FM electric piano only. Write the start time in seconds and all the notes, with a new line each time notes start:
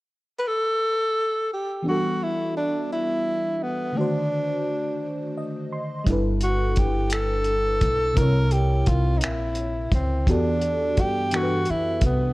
1.82 E3 B3 D4
1.87 G3 F#4 A4
3.93 D3 D#3 A3
3.99 F#4 C5
5.38 D#5
5.72 C6
6.04 G3 D4
6.08 E4 A4 B4
8.13 C3 C4
8.18 E4 A#4 C#5
10.27 E3 B3 D4 F#4 G4 A4
11.32 E3 B3 D4 F#4 A4
11.43 B4